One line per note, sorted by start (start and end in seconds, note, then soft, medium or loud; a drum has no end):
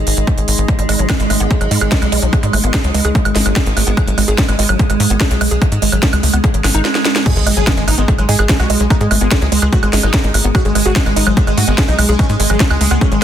0.00 7.25 G#3 medium
0.00 6.85 D#4 medium
0.00 6.85 G#4 medium
0.00 6.85 D#5 medium
0.07 0.14 G#1 loud
0.07 open hi-hat loud
0.17 0.24 G#1 medium
0.17 closed hi-hat medium
0.27 kick loud
0.27 closed hi-hat medium
0.38 0.45 G#1 medium
0.38 closed hi-hat medium
0.48 0.55 G#1 loud
0.48 open hi-hat loud
0.58 0.65 G#1 medium
0.58 closed hi-hat medium
0.68 0.74 G#3 medium
0.68 kick loud
0.68 closed hi-hat medium
0.79 0.86 G#1 medium
0.79 0.84 G#3 medium
0.79 closed hi-hat medium
0.89 0.96 G#1 loud
0.89 0.97 G#3 loud
0.89 open hi-hat loud
0.89 high woodblock soft
0.99 1.06 G#1 medium
0.99 1.05 F#3 medium
0.99 closed hi-hat medium
1.10 1.15 G#4 medium
1.10 kick loud
1.10 snare loud
1.10 closed hi-hat medium
1.10 high woodblock medium
1.20 1.27 G#1 medium
1.20 1.28 G#3 medium
1.20 closed hi-hat medium
1.30 1.37 G#1 loud
1.30 1.39 A3 medium
1.30 open hi-hat loud
1.30 high woodblock soft
1.40 1.47 G#1 medium
1.40 1.44 B3 medium
1.40 closed hi-hat medium
1.51 1.54 G#4 loud
1.51 kick loud
1.51 closed hi-hat medium
1.61 1.68 G#1 medium
1.61 1.67 F#3 medium
1.61 closed hi-hat medium
1.61 high woodblock soft
1.71 1.78 G#2 loud
1.71 1.80 G#3 loud
1.71 open hi-hat loud
1.81 1.89 G#1 medium
1.81 1.87 G#4 loud
1.81 closed hi-hat medium
1.81 high woodblock medium
1.92 1.97 G#3 medium
1.92 kick loud
1.92 snare loud
1.92 closed hi-hat medium
2.02 2.09 B1 medium
2.02 2.08 G#3 medium
2.02 closed hi-hat medium
2.02 high woodblock soft
2.12 2.19 B1 loud
2.12 2.21 G#3 loud
2.12 open hi-hat loud
2.23 2.30 B1 medium
2.23 2.28 F#3 medium
2.23 closed hi-hat medium
2.33 2.38 G#4 medium
2.33 kick loud
2.33 closed hi-hat medium
2.33 high woodblock soft
2.43 2.50 G#2 medium
2.43 2.52 G#3 medium
2.43 closed hi-hat medium
2.53 2.60 G#1 loud
2.53 2.62 A3 medium
2.53 open hi-hat loud
2.53 high woodblock medium
2.64 2.71 G#1 medium
2.64 2.67 B3 medium
2.64 closed hi-hat medium
2.74 2.77 G#4 loud
2.74 kick loud
2.74 snare loud
2.74 closed hi-hat medium
2.74 high woodblock soft
2.84 2.91 C#2 medium
2.84 2.90 F#3 medium
2.84 closed hi-hat medium
2.94 3.02 C#2 loud
2.94 3.03 G#3 loud
2.94 open hi-hat loud
3.05 3.12 C#2 medium
3.05 3.10 G#4 loud
3.05 closed hi-hat medium
3.05 high woodblock soft
3.15 3.21 G#3 medium
3.15 kick loud
3.15 closed hi-hat medium
3.25 3.32 G#1 medium
3.25 3.31 G#3 medium
3.25 closed hi-hat medium
3.25 high woodblock medium
3.35 3.43 G#1 loud
3.35 3.44 G#3 loud
3.35 snare medium
3.35 open hi-hat loud
3.46 3.53 G#1 medium
3.46 3.51 F#3 medium
3.46 closed hi-hat medium
3.46 high woodblock soft
3.56 3.62 G#4 medium
3.56 kick loud
3.56 snare loud
3.56 closed hi-hat medium
3.66 3.74 G#1 medium
3.66 3.75 G#3 medium
3.66 closed hi-hat medium
3.77 3.84 G#1 loud
3.77 3.85 A3 medium
3.77 open hi-hat loud
3.77 high woodblock soft
3.87 3.94 G#1 medium
3.87 3.90 B3 medium
3.87 closed hi-hat medium
3.97 4.01 G#4 loud
3.97 kick loud
3.97 closed hi-hat medium
3.97 high woodblock medium
4.07 4.15 G#1 medium
4.07 4.13 F#3 medium
4.07 closed hi-hat medium
4.18 4.25 G#1 loud
4.18 4.26 G#3 loud
4.18 open hi-hat loud
4.18 high woodblock soft
4.28 4.35 G#1 medium
4.28 4.34 G#4 loud
4.28 closed hi-hat medium
4.38 4.44 G#3 medium
4.38 kick loud
4.38 snare loud
4.38 closed hi-hat medium
4.49 4.56 G#1 medium
4.49 4.54 G#3 medium
4.49 closed hi-hat medium
4.49 high woodblock soft
4.59 4.66 G#1 loud
4.59 4.67 G#3 loud
4.59 open hi-hat loud
4.69 4.76 G#1 medium
4.69 4.75 F#3 medium
4.69 closed hi-hat medium
4.69 high woodblock medium
4.79 4.85 G#4 medium
4.79 kick loud
4.79 closed hi-hat medium
4.90 4.97 G#1 medium
4.90 4.98 G#3 medium
4.90 closed hi-hat medium
4.90 high woodblock soft
5.00 5.07 G#2 loud
5.00 5.08 A3 medium
5.00 open hi-hat loud
5.10 5.17 G#1 medium
5.10 5.14 B3 medium
5.10 closed hi-hat medium
5.21 5.24 G#4 loud
5.21 kick loud
5.21 snare loud
5.21 closed hi-hat medium
5.21 high woodblock soft
5.31 5.38 B1 medium
5.31 5.36 F#3 medium
5.31 closed hi-hat medium
5.41 5.48 B1 loud
5.41 5.49 G#3 loud
5.41 open hi-hat loud
5.41 high woodblock medium
5.51 5.58 B1 medium
5.51 5.57 G#4 loud
5.51 closed hi-hat medium
5.62 5.67 G#3 medium
5.62 kick loud
5.62 closed hi-hat medium
5.62 high woodblock soft
5.72 5.79 G#2 medium
5.72 5.77 G#3 medium
5.72 closed hi-hat medium
5.82 5.89 G#1 loud
5.82 5.91 G#3 loud
5.82 open hi-hat loud
5.92 6.00 G#1 medium
5.92 5.98 F#3 medium
5.92 closed hi-hat medium
5.92 high woodblock soft
6.03 6.08 G#4 medium
6.03 kick loud
6.03 snare loud
6.03 closed hi-hat medium
6.13 6.20 C#2 medium
6.13 6.21 G#3 medium
6.13 closed hi-hat medium
6.13 high woodblock medium
6.23 6.30 C#2 loud
6.23 6.32 A3 medium
6.23 open hi-hat loud
6.33 6.41 C#2 medium
6.33 6.37 B3 medium
6.33 closed hi-hat medium
6.33 high woodblock soft
6.44 6.47 G#4 loud
6.44 kick loud
6.44 closed hi-hat medium
6.54 6.61 G#1 medium
6.54 6.60 F#3 medium
6.54 closed hi-hat medium
6.64 6.71 G#1 loud
6.64 6.73 G#4 medium
6.64 snare medium
6.64 open hi-hat loud
6.64 high woodblock soft
6.75 6.82 G#1 medium
6.75 6.83 D#4 loud
6.75 closed hi-hat medium
6.85 snare medium
6.95 snare medium
7.05 snare medium
7.16 snare medium
7.26 13.24 G#3 medium
7.26 7.32 G#3 medium
7.26 7.31 G#4 loud
7.26 kick loud
7.26 closed hi-hat medium
7.26 crash loud
7.26 impact medium
7.36 7.43 G#1 medium
7.36 7.42 G#3 medium
7.36 closed hi-hat soft
7.47 7.54 G#1 loud
7.47 7.55 G#3 loud
7.47 7.52 G#3 medium
7.47 open hi-hat loud
7.47 high woodblock soft
7.57 7.64 G#1 medium
7.57 7.62 F#3 medium
7.57 7.62 G#4 loud
7.57 closed hi-hat soft
7.67 7.73 G#3 medium
7.67 7.73 G#4 medium
7.67 kick loud
7.67 snare loud
7.67 closed hi-hat medium
7.67 high woodblock medium
7.77 7.84 G#1 medium
7.77 7.86 G#3 medium
7.77 7.83 G#3 medium
7.77 closed hi-hat soft
7.88 7.95 G#1 loud
7.88 7.96 A3 medium
7.88 7.93 D#4 medium
7.88 open hi-hat loud
7.88 high woodblock soft
7.98 8.05 G#1 medium
7.98 8.03 G#3 medium
7.98 8.01 B3 medium
7.98 closed hi-hat soft
8.08 8.14 G#3 medium
8.08 8.12 G#4 loud
8.08 kick loud
8.08 closed hi-hat medium
8.18 8.26 G#1 medium
8.18 8.24 F#3 medium
8.18 8.24 G#3 medium
8.18 closed hi-hat soft
8.18 high woodblock soft
8.29 8.36 G#2 loud
8.29 8.37 G#3 loud
8.29 8.34 G#4 medium
8.29 open hi-hat loud
8.39 8.46 G#1 medium
8.39 8.44 G#3 medium
8.39 8.45 G#4 loud
8.39 closed hi-hat soft
8.39 high woodblock medium
8.49 8.55 G#3 medium
8.49 kick loud
8.49 snare loud
8.49 closed hi-hat medium
8.60 8.67 B1 medium
8.60 8.65 G#3 medium
8.60 8.65 F#4 medium
8.60 closed hi-hat soft
8.60 high woodblock soft
8.70 8.77 B1 loud
8.70 8.78 G#3 loud
8.70 8.75 G#3 medium
8.70 open hi-hat loud
8.80 8.87 B1 medium
8.80 8.86 F#3 medium
8.80 8.86 G#3 medium
8.80 closed hi-hat soft
8.90 8.96 D#4 medium
8.90 8.96 G#4 medium
8.90 kick loud
8.90 closed hi-hat medium
8.90 high woodblock soft
9.01 9.08 G#2 medium
9.01 9.09 G#3 medium
9.01 9.06 G#3 medium
9.01 closed hi-hat soft
9.11 9.18 G#1 loud
9.11 9.16 G#3 medium
9.11 9.19 A3 medium
9.11 open hi-hat loud
9.11 high woodblock medium
9.21 9.28 G#1 medium
9.21 9.27 G#3 medium
9.21 9.25 B3 medium
9.21 closed hi-hat soft
9.31 9.35 G#4 loud
9.31 kick loud
9.31 snare loud
9.31 closed hi-hat medium
9.31 high woodblock soft
9.42 9.49 C#2 medium
9.42 9.47 F#3 medium
9.42 9.47 G#3 medium
9.42 closed hi-hat soft
9.52 9.59 C#2 loud
9.52 9.60 G#3 loud
9.52 9.57 G#3 medium
9.52 open hi-hat loud
9.62 9.69 C#2 medium
9.62 9.68 G#3 medium
9.62 9.68 G#4 loud
9.62 closed hi-hat soft
9.62 high woodblock soft
9.73 9.78 G#3 medium
9.73 9.78 F#4 medium
9.73 kick loud
9.73 closed hi-hat medium
9.83 9.90 G#1 medium
9.83 9.88 G#3 medium
9.83 closed hi-hat soft
9.83 high woodblock medium
9.93 10.00 G#1 loud
9.93 9.99 G#3 medium
9.93 10.02 G#3 loud
9.93 snare medium
9.93 open hi-hat loud
10.03 10.11 G#1 loud
10.03 10.09 F#3 medium
10.03 10.47 D#4 loud
10.03 closed hi-hat soft
10.03 high woodblock soft
10.14 10.19 G#4 medium
10.14 kick loud
10.14 snare loud
10.14 closed hi-hat medium
10.24 10.31 G#1 medium
10.24 10.32 G#3 medium
10.24 closed hi-hat soft
10.34 10.41 G#1 loud
10.34 10.43 A3 medium
10.34 open hi-hat loud
10.34 high woodblock soft
10.44 10.52 G#1 medium
10.44 10.48 B3 medium
10.44 closed hi-hat soft
10.55 10.60 F#4 loud
10.55 10.58 G#4 loud
10.55 kick loud
10.55 closed hi-hat medium
10.55 high woodblock medium
10.65 10.72 G#1 medium
10.65 10.71 F#3 medium
10.65 10.70 G#3 medium
10.65 closed hi-hat soft
10.75 10.82 G#1 loud
10.75 10.84 G#3 loud
10.75 10.81 G#3 medium
10.75 open hi-hat loud
10.75 high woodblock soft
10.86 10.93 G#1 loud
10.86 10.91 F#4 loud
10.86 10.91 G#4 loud
10.86 closed hi-hat soft
10.96 11.01 G#3 medium
10.96 kick loud
10.96 snare loud
10.96 closed hi-hat medium
11.06 11.13 G#1 medium
11.06 11.12 G#3 medium
11.06 closed hi-hat soft
11.06 high woodblock soft
11.16 11.24 G#1 loud
11.16 11.25 G#3 loud
11.16 11.22 D#4 medium
11.16 open hi-hat loud
11.27 11.34 G#1 medium
11.27 11.32 F#3 medium
11.27 11.32 G#3 medium
11.27 closed hi-hat soft
11.27 high woodblock medium
11.37 11.42 G#3 medium
11.37 11.43 G#4 medium
11.37 kick loud
11.37 closed hi-hat medium
11.47 11.54 G#1 medium
11.47 11.56 G#3 medium
11.47 11.53 G#3 medium
11.47 closed hi-hat soft
11.47 high woodblock soft
11.57 11.65 G#2 loud
11.57 11.66 A3 medium
11.57 11.63 F#4 medium
11.57 open hi-hat loud
11.68 11.75 G#1 medium
11.68 11.73 G#3 medium
11.68 11.71 B3 medium
11.68 closed hi-hat soft
11.78 11.83 G#3 medium
11.78 11.81 G#4 loud
11.78 kick loud
11.78 snare loud
11.78 closed hi-hat medium
11.78 high woodblock soft
11.88 11.95 B1 medium
11.88 11.94 F#3 medium
11.88 11.94 D#4 medium
11.88 closed hi-hat soft
11.99 12.06 B1 loud
11.99 12.07 G#3 loud
11.99 12.04 G#3 medium
11.99 open hi-hat loud
11.99 high woodblock medium
12.09 12.16 B1 medium
12.09 12.14 G#3 medium
12.09 12.14 G#4 loud
12.09 closed hi-hat soft
12.19 12.25 G#3 medium
12.19 12.25 C#4 loud
12.19 kick loud
12.19 closed hi-hat medium
12.19 high woodblock soft
12.29 12.37 G#2 medium
12.29 12.35 G#3 medium
12.29 closed hi-hat soft
12.40 12.47 G#1 loud
12.40 12.45 G#3 medium
12.40 12.48 G#3 loud
12.40 open hi-hat loud
12.50 12.57 G#1 loud
12.50 12.56 F#3 medium
12.50 12.55 G#3 medium
12.50 closed hi-hat soft
12.50 high woodblock soft
12.60 12.66 G#4 medium
12.60 kick loud
12.60 snare loud
12.60 closed hi-hat medium
12.71 12.78 C#2 medium
12.71 12.76 G#3 medium
12.71 12.79 G#3 medium
12.71 closed hi-hat soft
12.71 high woodblock medium
12.81 12.88 C#2 loud
12.81 12.86 G#3 medium
12.81 12.89 A3 medium
12.81 open hi-hat loud
12.91 12.98 C#2 loud
12.91 12.96 G#3 medium
12.91 12.94 B3 medium
12.91 closed hi-hat soft
12.91 high woodblock soft
13.01 13.07 C#4 medium
13.01 13.05 G#4 loud
13.01 kick loud
13.01 closed hi-hat medium
13.12 13.19 G#1 medium
13.12 13.17 F#3 medium
13.12 13.17 G#3 medium
13.12 closed hi-hat soft